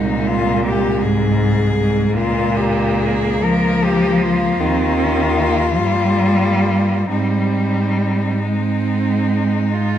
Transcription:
0.00 2.11 C2 medium
0.00 1.04 A#2 medium
0.00 2.12 G#3 medium
0.00 0.28 D#4 medium
0.27 0.65 F4 medium
0.65 1.04 G4 medium
1.03 1.77 G#2 medium
1.03 2.16 G#4 medium
1.78 2.18 G#2 medium
2.16 4.56 C#2 medium
2.16 3.42 A#2 loud
2.16 4.62 A#3 medium
2.16 2.58 F4 medium
2.57 3.02 G4 medium
3.01 3.46 G#4 medium
3.43 4.61 F3 loud
3.43 3.85 A#4 medium
3.84 4.23 G4 medium
4.21 7.10 F4 medium
4.59 5.80 D#2 medium
4.59 5.81 D#3 medium
4.59 5.00 C4 medium
4.99 5.38 C#4 medium
5.39 5.78 A#3 medium
5.79 7.10 G2 medium
5.79 7.11 G3 medium
5.79 7.09 A#3 medium
7.11 9.98 G#2 medium
7.11 8.45 G3 medium
7.11 8.32 C4 soft
7.11 9.98 D#4 medium
8.43 9.98 G#3 medium
8.43 9.73 C4 medium
9.76 9.98 F4 medium

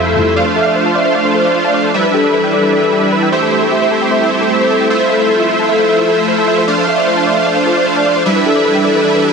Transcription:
0.00 0.16 F2 medium
0.00 1.91 F3 medium
0.00 0.16 G3 medium
0.00 0.16 A3 medium
0.00 0.34 A3 medium
0.00 0.17 C4 medium
0.00 0.34 E4 medium
0.00 0.34 F4 medium
0.00 0.33 A4 medium
0.00 0.34 C5 medium
0.00 0.34 E5 medium
0.00 0.38 E5 medium
0.07 0.36 A4 medium
0.16 0.26 F2 medium
0.16 0.26 G3 medium
0.16 0.26 A3 medium
0.16 0.27 C4 medium
0.16 0.27 E4 medium
0.36 1.92 A3 medium
0.36 3.29 D4 medium
0.36 1.92 D4 medium
0.36 1.92 F4 medium
0.36 1.92 C5 medium
0.36 0.41 D5 medium
0.36 1.92 F5 medium
0.46 0.54 C5 medium
0.56 0.59 A4 medium
0.56 0.68 E5 medium
0.66 0.71 D5 medium
0.76 0.79 C5 medium
0.86 0.89 A5 medium
0.95 1.00 D5 loud
0.95 1.08 E5 medium
1.05 1.10 C5 medium
1.15 1.20 D5 medium
1.25 1.32 C5 medium
1.35 1.38 A4 medium
1.35 1.47 C5 medium
1.45 1.50 D5 medium
1.54 1.58 C5 medium
1.65 1.77 D5 medium
1.65 1.68 A5 medium
1.74 1.79 D5 loud
1.84 1.89 C5 medium
1.94 3.31 E3 medium
1.94 3.30 G3 medium
1.94 3.30 D4 medium
1.94 3.30 E4 medium
1.94 3.31 G4 medium
1.94 3.30 B4 medium
1.94 1.99 D5 medium
1.94 3.30 E5 medium
2.04 2.11 B4 medium
2.13 2.17 G4 medium
2.13 2.20 A4 medium
2.24 2.30 A4 medium
2.24 2.29 D5 medium
2.34 2.37 B4 medium
2.44 2.47 G5 medium
2.53 2.93 A4 medium
2.53 2.58 D5 loud
2.63 2.68 B4 medium
2.73 2.78 D5 medium
2.83 2.90 B4 medium
2.93 2.96 G4 medium
3.03 3.08 D5 medium
3.12 3.15 B4 medium
3.23 3.26 G5 medium
3.32 4.89 G3 medium
3.32 4.88 A3 medium
3.32 4.89 C4 medium
3.32 4.88 E4 medium
3.32 4.88 G4 medium
3.32 6.64 A4 medium
3.32 3.37 C5 loud
3.32 4.88 C5 medium
3.32 4.88 E5 medium
3.42 3.47 A4 medium
3.52 3.57 C5 medium
3.62 3.69 A4 medium
3.72 3.75 G4 medium
3.72 3.84 E5 medium
3.82 3.87 C5 medium
3.91 3.94 A4 medium
4.02 4.04 G5 medium
4.11 4.16 C5 loud
4.11 4.24 E5 medium
4.21 4.26 A4 medium
4.31 4.36 C5 medium
4.41 4.48 A4 medium
4.51 4.54 G4 medium
4.51 4.63 C5 medium
4.61 4.66 C5 medium
4.70 4.73 A4 medium
4.70 4.77 A4 medium
4.81 4.87 A4 medium
4.81 4.83 G5 medium
4.90 8.22 F3 medium
4.90 6.66 A3 medium
4.90 6.66 E4 medium
4.90 6.66 F4 medium
4.90 4.97 C5 medium
4.90 6.66 C5 medium
4.90 4.95 E5 loud
4.90 6.66 E5 medium
5.00 5.05 C5 medium
5.00 5.07 C5 medium
5.10 5.40 A4 medium
5.10 5.15 E5 medium
5.20 5.27 C5 medium
5.30 5.33 A4 medium
5.40 5.44 E5 medium
5.49 5.52 C5 medium
5.59 5.62 A5 medium
5.69 5.87 A4 medium
5.69 5.74 E5 loud
5.79 5.84 C5 medium
5.89 5.95 A4 medium
5.89 5.94 E5 medium
5.99 6.05 A4 medium
5.99 6.06 C5 medium
6.08 6.12 A4 medium
6.19 6.23 E5 medium
6.28 6.31 C5 medium
6.38 6.68 A4 medium
6.38 6.41 A5 medium
6.48 6.53 E5 loud
6.58 6.63 C5 medium
6.68 8.23 A3 medium
6.68 8.23 D4 medium
6.68 8.24 D4 medium
6.68 8.23 F4 medium
6.68 8.23 C5 medium
6.68 8.24 C5 medium
6.68 6.73 D5 medium
6.68 8.23 F5 medium
6.78 6.85 C5 medium
6.87 6.91 A4 medium
6.87 7.00 E5 medium
6.98 7.02 D5 medium
7.07 7.10 C5 medium
7.17 7.20 A5 medium
7.27 7.32 D5 loud
7.27 7.39 E5 medium
7.37 7.42 C5 medium
7.47 7.52 D5 medium
7.57 7.64 C5 medium
7.66 7.69 A4 medium
7.66 7.79 C5 medium
7.77 7.81 D5 medium
7.86 7.89 C5 medium
7.96 8.08 D5 medium
7.96 7.99 A5 medium
8.06 8.11 D5 loud
8.16 8.21 C5 medium
8.26 9.33 E3 medium
8.26 9.33 G3 medium
8.26 9.33 D4 medium
8.26 9.33 E4 medium
8.26 9.33 G4 medium
8.26 9.33 B4 medium
8.26 8.31 D5 medium
8.26 9.33 E5 medium
8.36 8.43 B4 medium
8.45 8.49 G4 medium
8.45 8.52 A4 medium
8.56 8.62 A4 medium
8.56 8.60 D5 medium
8.65 8.68 B4 medium
8.75 8.78 G5 medium
8.85 9.24 A4 medium
8.85 8.90 D5 loud
8.95 9.00 B4 medium
9.05 9.10 D5 medium
9.15 9.22 B4 medium
9.24 9.27 G4 medium

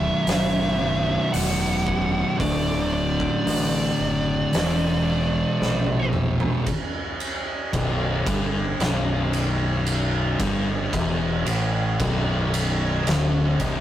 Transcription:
0.00 0.76 B1 loud
0.00 0.77 F#2 loud
0.00 0.77 B2 loud
0.00 1.37 E5 loud
0.25 1.15 F#1 loud
0.25 2.36 B1 medium
0.25 2.36 F#2 medium
0.25 2.37 B2 medium
0.25 open hi-hat medium
0.29 snare loud
0.79 1.31 B1 medium
0.79 1.30 F#2 medium
0.79 1.29 B2 medium
1.32 2.22 E1 medium
1.32 2.36 B1 medium
1.32 2.37 F#2 medium
1.32 2.37 B2 medium
1.32 2.35 F#5 loud
1.32 open hi-hat medium
1.87 kick medium
2.38 3.29 D1 loud
2.38 4.49 D2 loud
2.38 4.49 A2 loud
2.38 4.50 D3 loud
2.38 2.92 D5 loud
2.38 kick loud
2.38 open hi-hat medium
2.94 6.09 D5 medium
3.20 kick medium
3.46 3.90 A1 medium
3.46 open hi-hat medium
3.99 4.44 F#1 medium
4.53 5.42 E1 loud
4.53 6.63 E2 medium
4.53 6.64 B2 loud
4.53 6.64 E3 loud
4.53 snare loud
4.53 open hi-hat medium
5.61 6.49 A#1 medium
5.61 snare medium
5.86 high tom medium
6.13 mid tom loud
6.40 floor tom loud
6.67 kick loud
6.67 ride loud
7.20 ride medium
7.73 8.23 B0 loud
7.73 8.25 B1 loud
7.73 kick loud
7.73 ride loud
8.27 8.76 G1 medium
8.27 8.78 G2 loud
8.27 kick loud
8.27 ride medium
8.80 10.35 B0 loud
8.80 10.38 B1 loud
8.80 snare loud
8.80 ride medium
9.33 ride medium
9.87 ride loud
10.40 10.89 G1 medium
10.40 10.91 G2 loud
10.40 kick loud
10.40 ride medium
10.93 11.42 E1 loud
10.93 11.44 E2 loud
10.93 kick loud
10.93 ride loud
11.46 11.96 A1 loud
11.46 11.98 A2 loud
11.46 ride medium
12.00 13.03 B0 loud
12.00 13.05 B1 loud
12.00 kick loud
12.00 ride loud
12.54 ride medium
13.06 13.56 D1 loud
13.06 13.58 D2 medium
13.06 snare loud
13.06 ride loud
13.60 13.80 C1 medium
13.60 13.80 C2 loud
13.60 kick loud
13.60 ride medium

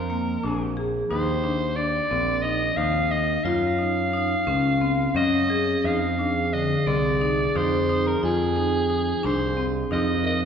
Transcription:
0.00 0.36 F2 medium
0.00 0.74 A#4 medium
0.10 0.34 A#3 medium
0.44 1.03 A#1 medium
0.44 0.67 D4 medium
0.77 1.01 G#4 medium
1.10 1.99 D#2 medium
1.10 1.34 D#4 medium
1.10 1.78 C5 medium
1.44 1.67 D4 medium
1.76 2.01 D4 medium
1.76 2.44 D5 medium
2.11 2.70 A#1 medium
2.11 2.35 C4 medium
2.42 2.68 D#4 medium
2.42 2.78 D#5 medium
2.77 3.37 D#2 medium
2.77 3.02 D#4 medium
2.77 3.12 F5 medium
3.11 3.35 D#4 medium
3.11 3.45 D#5 medium
3.44 4.34 F#2 medium
3.44 3.69 F4 medium
3.44 5.15 F5 medium
3.79 4.03 D#4 medium
4.13 4.37 D#4 medium
4.47 5.07 C#2 medium
4.47 4.71 C#4 medium
4.81 5.06 C4 medium
5.15 5.75 F#2 medium
5.15 5.40 C#4 medium
5.15 5.87 D#5 loud
5.50 5.74 G#4 medium
5.84 6.75 F2 medium
5.84 6.08 D#4 medium
5.84 10.28 G#4 medium
5.84 6.55 F5 medium
6.19 6.43 D4 medium
6.53 6.77 D3 medium
6.53 6.89 D#5 medium
6.87 7.47 C2 medium
6.87 7.11 C4 medium
6.87 7.58 D5 medium
7.21 7.45 D#4 medium
7.55 8.15 F2 medium
7.55 7.79 D#4 medium
7.55 8.09 C5 medium
7.89 8.13 D#4 medium
8.07 8.23 A#4 medium
8.23 9.12 F2 medium
8.23 8.47 F4 medium
8.23 9.27 G#4 medium
8.56 8.80 D#4 medium
8.90 9.14 D#4 medium
9.23 9.83 C2 medium
9.23 9.47 D4 medium
9.23 9.65 C5 medium
9.57 9.81 C4 medium
9.91 10.45 F2 medium
9.91 10.15 D#4 medium
9.91 10.23 D#5 medium
10.24 10.45 A#4 medium
10.24 10.41 D#5 medium

